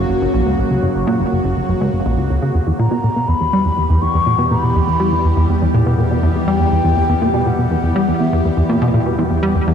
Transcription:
Already playing: F#2 C#3 F#3 A#3 F#4
0.09 F#1
0.21 F#1
0.34 A#1
0.46 C#2
0.58 A#1
0.71 C#2
0.83 F#1
0.95 F#1
1.07 A#2
1.20 F#1
1.32 F#1
1.44 F#1
1.57 F#1
1.69 F#1
1.81 C#2
1.93 F#1
2.05 A#1
2.18 C#2
2.30 C#2
2.42 C#3
2.54 E2 E3 G3 B3 G4
2.67 E2
2.79 A#2 A#5
2.91 B2
3.04 A#2
3.16 B2
3.28 E2 B5
3.41 E2
3.53 G3
3.65 E2
3.77 E2
3.90 E2
4.02 E2 C#6
4.14 E2
4.26 A#2
4.39 B2
4.51 A#2 B5
4.63 B2
4.75 E2
4.88 E2
5.00 G3
5.12 E2
5.25 E2
5.37 E2
5.50 E2
5.62 E2
5.74 A#2
5.86 B2
5.98 A#2
6.11 B2
6.23 E2
6.36 E2
6.47 G3 G5
6.60 E2
6.72 E2
6.85 E2
6.97 E2
7.09 E2
7.22 A#2
7.34 B2
7.45 A#2 F#5
7.59 B2
7.71 E2
7.83 E2
7.96 G3
8.08 E2
8.19 E2 E5
8.33 E2
8.45 E2
8.57 E2
8.69 A#2
8.82 B2
8.94 A#2
9.06 B2
9.18 E2
9.30 E2
9.43 G3
9.55 E2
9.67 E2

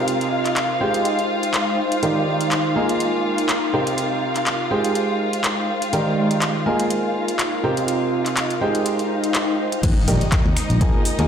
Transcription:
Already playing: C3 D#4 F4 G4 A#4 C5 F5 G5
0.08 closed hi-hat
0.21 closed hi-hat
0.28 C5 G5
0.46 clap, closed hi-hat
0.56 clap, closed hi-hat
0.81 G#3 D#4 G4 G#4 C5 G5
0.94 closed hi-hat
1.05 closed hi-hat
1.19 closed hi-hat
1.43 closed hi-hat
1.54 clap, closed hi-hat
1.92 closed hi-hat
2.03 D#3 D#4 G4 A#4 D5 G5, closed hi-hat
2.19 A#4
2.41 closed hi-hat
2.52 clap, closed hi-hat
2.76 A#3 F4 G#4 A#4 D#5 G#5
2.89 closed hi-hat
3.00 closed hi-hat
3.38 closed hi-hat
3.49 clap, closed hi-hat
3.73 C3 D#4 G4 A#4 C5 G5
3.87 closed hi-hat
3.98 closed hi-hat
4.17 C5 G5
4.36 clap, closed hi-hat
4.47 clap, closed hi-hat
4.71 G#3 D#4 G4 G#4 C5 G5
4.84 closed hi-hat
4.95 closed hi-hat
5.33 closed hi-hat
5.44 clap, closed hi-hat
5.82 closed hi-hat
5.93 D#3 D#4 G4 A#4 D5 G5, closed hi-hat
6.22 A#4
6.31 closed hi-hat
6.42 clap, closed hi-hat
6.66 A#3 F4 G#4 A#4 D#5 G#5
6.80 closed hi-hat
6.90 closed hi-hat
7.28 closed hi-hat
7.39 clap, closed hi-hat
7.64 C3 D#4 G4 A#4 C5 G5
7.77 closed hi-hat
7.88 closed hi-hat
8.08 C5 G5
8.26 clap, closed hi-hat
8.37 clap, closed hi-hat
8.50 closed hi-hat
8.61 G#3 D#4 G4 G#4 C5 G5
8.75 closed hi-hat
8.86 closed hi-hat, swell
8.99 closed hi-hat
9.24 closed hi-hat
9.35 clap, closed hi-hat
9.72 closed hi-hat
9.83 D#2 D#4 D#5, kick, closed hi-hat, crash, impact
10.06 A#1 D#3 D#4 G4 A#4 D5 G5, open hi-hat
10.21 closed hi-hat
10.32 kick, clap, closed hi-hat
10.46 D#2
10.56 F4, finger snap, open hi-hat
10.70 A#1, closed hi-hat
10.81 A#3 F4 G#4 A#4 D#5 G#5, kick, closed hi-hat
11.05 open hi-hat
11.19 D#2 A#3 F4 G#4 A#4 D#5 G#5, closed hi-hat

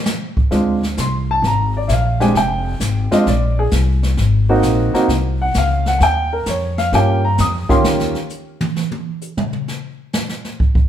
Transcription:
0.05 snare, hi-hat pedal
0.37 muted upright bass stroke, kick
0.51 D2 G#3 C4 D4 F4, brush sweep, snare
0.83 snare
0.97 C2 C6, snare, hi-hat pedal
1.31 A5
1.42 G#1, brush sweep, snare
1.47 A#5
1.77 D5
1.88 A#1 E5, snare, hi-hat pedal
1.92 F5
2.20 G#3 C4 D4 G4 G#5, snare
2.34 F1 G5, brush sweep, snare
2.80 G#1, snare, hi-hat pedal
3.11 G#3 C4 D4 F4 D#5, muted upright bass stroke, snare
3.26 A#1 D5, brush sweep, snare
3.59 G#4
3.71 C2, snare, hi-hat pedal
4.03 snare
4.17 G#1, brush sweep, snare
4.49 A#3 C4 D#4 F#4
4.62 A#1, snare, hi-hat pedal
4.94 A#3 C4 D#4 F#4, muted upright bass stroke, snare
5.08 C2, brush sweep, snare
5.42 F#5
5.54 C#2, snare, hi-hat pedal
5.58 F5
5.86 F#5, snare
5.98 D#2 F#5, brush sweep, snare
6.03 G5
6.33 A#4
6.46 F2 C#5, snare, hi-hat pedal
6.78 F5, snare
6.92 G2 A#3 C#4 F4 G4 G5, brush sweep, snare
7.25 A#5
7.38 F2 D#6, snare, hi-hat pedal
7.69 D#3 A#3 C#4 F4 G4 C6, muted upright bass stroke, kick, snare
7.84 D#2, snare
7.99 snare
8.15 snare
8.29 hi-hat pedal
8.61 high tom
8.76 snare
8.91 high tom
9.21 hi-hat pedal
9.37 mid tom
9.53 mid tom
9.68 snare
10.13 snare, hi-hat pedal
10.29 snare
10.45 snare
10.60 kick
10.75 kick

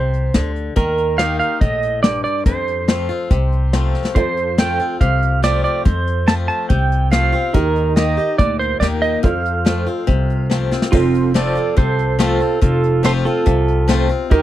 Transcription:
Already playing: C2 C3 C5
0.13 closed hi-hat
0.34 D2 D3, snare, closed hi-hat
0.56 closed hi-hat
0.76 D#2 D#3 A#4, kick, closed hi-hat
0.98 closed hi-hat
1.18 D#3 A#3 D#4 G4 F5, snare, closed hi-hat
1.39 F5, closed hi-hat
1.61 A#1 A2 D#5, kick, closed hi-hat
1.82 closed hi-hat
2.03 G2 D5, snare, closed hi-hat
2.24 D5, closed hi-hat
2.45 F2 C5, kick, closed hi-hat
2.67 closed hi-hat
2.88 F3 A3 C4 F4, snare, closed hi-hat
3.09 C4 F4, closed hi-hat
3.31 C2 C3, kick, closed hi-hat
3.52 closed hi-hat
3.73 F3 A3 C4 F4, snare, closed hi-hat
3.95 snare
4.05 snare
4.14 F2 F4 A4 C5, kick, closed hi-hat
4.37 closed hi-hat
4.58 F3 A3 C4 F4 G5, snare, closed hi-hat
4.79 C4 F4, closed hi-hat
5.01 C2 C3 F5, kick, closed hi-hat
5.22 closed hi-hat
5.43 F3 A3 C4 F4 D5, snare, closed hi-hat
5.64 D5, closed hi-hat
5.85 F2 C5, kick, closed hi-hat
6.07 closed hi-hat
6.27 F3 A3 C4 F4 A5, snare, closed hi-hat
6.48 A5, closed hi-hat
6.69 C2 C3 G5, kick, closed hi-hat
6.92 closed hi-hat
7.11 F3 A3 C4 F4 F5, snare, closed hi-hat
7.32 C4 F4, closed hi-hat
7.53 D#2 D#3 D#4 G4 A#4, kick, closed hi-hat
7.76 closed hi-hat
7.96 D#3 A#3 D#4 G4 D#5, snare, closed hi-hat
8.17 D#4 G4, closed hi-hat
8.38 D2 A#2 D5, kick, closed hi-hat
8.59 C5, closed hi-hat
8.80 D#2 D#3 A#3 D#4 G4 D5, snare, closed hi-hat
9.02 D#5, closed hi-hat
9.22 F2 F4 A4 C5 F5, kick, closed hi-hat
9.45 closed hi-hat
9.65 F3 A3 C4 F4, snare, closed hi-hat
9.86 C4 F4, closed hi-hat
10.07 C2 C3, kick, closed hi-hat
10.30 closed hi-hat
10.50 F3 A3 C4 F4, snare, closed hi-hat
10.71 C4 F4, snare
10.82 snare
10.92 F1 F2 C4 F4 A4 C5, kick, crash
11.14 closed hi-hat
11.34 F3 A3 C4 F4 A4 D5, snare, closed hi-hat
11.55 C4 F4, closed hi-hat
11.77 C2 C3 A4 C5, kick, closed hi-hat
11.99 closed hi-hat
12.19 F3 A3 C4 F4 A4, snare, closed hi-hat
12.40 C4 F4, closed hi-hat
12.62 F1 F2 F4 A4, kick, closed hi-hat
12.83 closed hi-hat
13.03 F3 A3 C4 F4 A4 C5, snare, closed hi-hat
13.25 C4 F4 A4, closed hi-hat
13.46 C2 C3, kick, closed hi-hat
13.68 closed hi-hat
13.88 F3 A3 C4 F4, snare, closed hi-hat
14.09 C4 F4, closed hi-hat
14.30 D#2 D#3 D#4 G4 A#4, kick, closed hi-hat

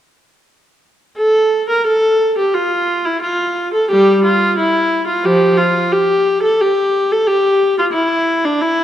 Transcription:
1.17 A4
1.70 A#4
1.87 A4
2.38 G4
2.53 F4
3.05 E4
3.22 F4
3.74 A4
3.91 G3 G4
4.24 F4
4.58 E4
5.07 F4
5.24 F3 G4
5.57 F4
5.92 G4
6.43 A4
6.60 G4
7.12 A4
7.27 G4
7.78 F4
7.93 E4
8.45 D4
8.61 E4

